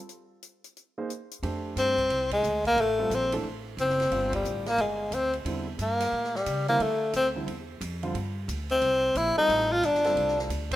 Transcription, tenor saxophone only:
1.78 2.29 C4 medium
2.33 2.64 G#3 medium
2.67 2.82 A#3 loud
2.81 3.16 A3 medium
3.15 3.34 C4 medium
3.81 4.30 C4 medium
4.35 4.70 G3 medium
4.68 4.83 A#3 medium
4.81 5.16 G#3 medium
5.14 5.34 C4 medium
5.82 6.38 A#3 medium
6.37 6.68 G3 medium
6.69 6.84 A#3 medium
6.83 7.15 A3 medium
7.16 7.28 C4 medium
8.71 9.19 C4 medium
9.17 9.38 E4 medium
9.38 9.74 D#4 medium
9.73 9.87 F4 medium
9.85 10.39 D4 medium

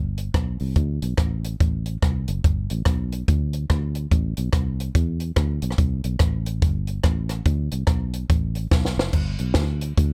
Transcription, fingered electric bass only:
0.00 0.28 G1 medium
0.34 0.56 B1 medium
0.61 0.74 C2 medium
0.76 0.98 D2 loud
1.02 1.16 B1 medium
1.18 1.54 A1 medium
1.61 1.96 A1 medium
2.03 2.24 C2 medium
2.29 2.42 F#1 loud
2.44 2.66 G1 loud
2.71 2.84 A1 medium
2.86 3.22 B1 medium
3.29 3.64 D2 medium
3.70 4.05 D2 medium
4.12 4.33 A1 loud
4.38 4.51 B1 medium
4.53 4.89 C2 medium
4.95 5.30 E2 medium
5.37 5.59 D2 medium
5.62 5.76 B1 medium
5.78 6.00 C2 loud
6.05 6.18 B1 medium
6.20 6.64 A1 loud
6.62 6.98 G1 loud
7.04 7.40 A1 medium
7.46 7.68 D2 loud
7.72 7.86 C2 medium
7.88 8.23 B1 medium
8.30 8.66 A1 loud
8.72 8.94 B1 medium
8.97 9.11 F#1 loud
9.14 9.36 G1 loud
9.40 9.53 B1 medium
9.55 9.91 D2 medium
9.98 10.13 D2 medium

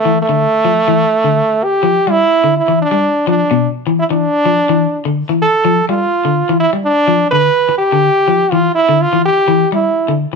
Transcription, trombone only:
0.00 0.20 A3 loud
0.22 1.65 A3 loud
1.64 2.12 G4 loud
2.11 2.57 E4 loud
2.57 2.78 E4 medium
2.82 3.25 D4 medium
3.29 3.69 D4 medium
3.99 4.05 E4 medium
4.11 5.02 D4 loud
5.42 5.86 A4 loud
5.90 6.57 F4 loud
6.60 6.71 E4 loud
6.85 7.29 D4 loud
7.31 7.76 B4 loud
7.78 8.53 G4 loud
8.52 8.74 F4 medium
8.75 9.03 E4 loud
9.02 9.25 F4 loud
9.25 9.69 G4 medium
9.75 10.15 E4 medium

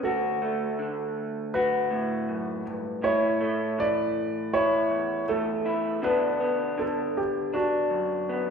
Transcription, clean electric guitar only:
0.04 2.28 D2 medium
0.04 1.54 F#4 soft
0.42 3.00 A3 soft
0.79 3.04 D3 soft
1.55 3.00 F#4 soft
1.91 3.01 A2 soft
2.29 2.66 F#2 soft
2.67 3.04 G2 soft
3.02 4.90 A2 medium
3.02 4.53 E4 soft
3.41 5.27 A3 soft
3.78 5.99 E3 soft
4.54 5.65 E4 medium
4.90 5.98 E2 soft
5.28 5.99 A3 soft
5.66 5.99 E4 soft
6.02 6.77 B2 medium
6.02 6.77 D3 soft
6.02 6.39 B3 soft
6.02 7.52 D4 soft
6.40 8.28 B3 soft
6.78 8.50 D3 soft
7.54 8.50 D4 medium
7.90 8.50 F#2 soft
8.29 8.50 B3 soft

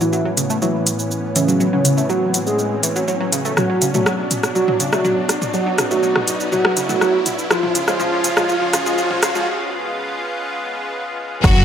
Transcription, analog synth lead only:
0.01 0.29 E4 loud
0.62 0.90 E4 loud
1.36 1.64 C#4 medium
1.73 2.01 C#4 medium
2.10 2.38 F#4 loud
2.47 2.75 G#4 loud
3.57 3.85 F#4 medium
3.94 4.22 F#4 medium
4.55 4.84 F#4 medium
4.93 5.21 F#4 medium
5.54 5.82 F#4 medium
5.91 6.19 F#4 medium
6.52 6.80 F#4 loud
6.89 7.17 F#4 medium
7.51 7.79 F4 loud
7.88 7.98 F4 medium
8.00 8.28 F4 loud
8.37 8.47 F4 medium
8.49 8.77 F4 loud
8.86 8.96 F4 medium
8.98 9.26 F4 loud
9.35 9.45 F4 loud
11.44 11.65 F#4 loud

